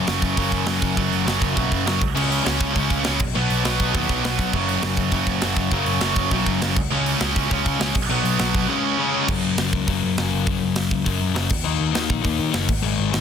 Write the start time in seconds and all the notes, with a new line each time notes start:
0.07 F#1 F#2 C#3 F#3, snare, open hi-hat
0.22 F#1, kick, open hi-hat
0.37 F#1 F#2 C#3 F#3, kick, open hi-hat
0.52 F#1, kick
0.66 F#1 F#2 C#3 F#3, snare, open hi-hat
0.82 F#1, kick, open hi-hat
0.97 F#1 F#2 C#3 F#3, kick, open hi-hat
1.12 F#1, open hi-hat
1.26 F#1 F#2 C#3 F#3, snare, open hi-hat
1.42 F#1, kick, open hi-hat
1.55 B1 F#2 C#3 F#3, kick, open hi-hat
1.72 F#1, kick, open hi-hat
1.86 F#1 F#2 C#3 F#3, snare, open hi-hat
2.01 C#2, kick, open hi-hat
2.14 C#2 C#3 G#3 C#4, crash
2.32 open hi-hat
2.44 C#2 C#3 G#3 C#4, snare, open hi-hat
2.60 C#2, kick, open hi-hat
2.73 C#2 C#3 G#3 C#4, kick, open hi-hat
2.90 C#2, kick, open hi-hat
3.04 C#2 C#3 G#3 C#4, snare, open hi-hat
3.20 B1, kick, crash
3.34 B1 B2 F#3 B3
3.50 B1, open hi-hat
3.65 B1 B2 F#3 B3, snare, open hi-hat
3.80 B1, kick, open hi-hat
3.95 D#2 B2 F#3 B3, kick, open hi-hat
4.09 B1, kick, open hi-hat
4.24 B1 B2 F#3 B3, snare, open hi-hat
4.39 B1, kick, open hi-hat
4.53 F#1 F#2 C#3 F#3, kick, crash
4.69 open hi-hat
4.82 F#1 F#2 C#3 F#3, snare, open hi-hat
4.97 F#1, kick, open hi-hat
5.12 F#1 F#2 C#3 F#3, kick, open hi-hat
5.27 F#1, kick, open hi-hat
5.42 F#1 F#2 C#3 F#3, snare, open hi-hat
5.56 F#1, kick, open hi-hat
5.71 F#1 F#2 C#3 F#3, kick, open hi-hat
5.86 F#1, open hi-hat
6.01 F#1 F#2 C#3 F#3, snare, open hi-hat
6.16 F#1, kick, open hi-hat
6.31 B1 F#2 C#3 F#3, kick, open hi-hat
6.46 F#1, kick, open hi-hat
6.61 F#1 F#2 C#3 F#3, snare, open hi-hat
6.76 C#2, kick, crash
6.91 C#2 C#3 G#3 C#4
7.06 open hi-hat
7.21 C#2 C#3 G#3 C#4, snare, open hi-hat
7.36 C#2, kick, open hi-hat
7.50 C#2 C#3 G#3 C#4, kick, open hi-hat
7.66 C#2, kick, open hi-hat
7.79 C#2 C#3 G#3 C#4, snare, open hi-hat
7.95 B1, kick, crash
8.09 B1 B2 F#3 B3
8.25 B1, open hi-hat
8.39 B1 B2 F#3 B3, snare, open hi-hat
8.55 B1, kick, open hi-hat
8.68 C#3 G#3 C#4
8.98 C#3 G#3 C#4
9.28 F#1 F#2 C#3 F#3, kick, crash
9.43 F#1
9.58 F#1 F#2 C#3 F#3, snare, open hi-hat
9.73 C#2, kick
9.87 F#1 F#2 C#3 F#3, kick, open hi-hat
10.03 F#2
10.18 F#1 F#2 C#3 F#3, snare, open hi-hat
10.33 F#1
10.47 F#1 F#2 C#3 F#3, kick, open hi-hat
10.63 F#1
10.76 F#1 F#2 C#3 F#3, snare, open hi-hat
10.91 C#2, kick
11.05 F#1 F#2 C#3 F#3, kick, open hi-hat
11.21 F#2
11.35 F#1 F#2 C#3 F#3, snare, open hi-hat
11.49 D#2, kick, crash
11.64 D#2 D#3 A#3 D#4
11.80 D#2
11.92 D#2 D#3 A#3 D#4, snare, open hi-hat
12.10 A#1, kick
12.22 D#2 D#3 A#3 D#4, kick, open hi-hat
12.39 D#3
12.51 F#1 D#3 A#3 D#4, snare, open hi-hat
12.69 G#1, kick, crash
12.82 G#1 G#2 D#3 G#3
12.99 G#1
13.11 G#1 G#2 D#3 G#3, snare, open hi-hat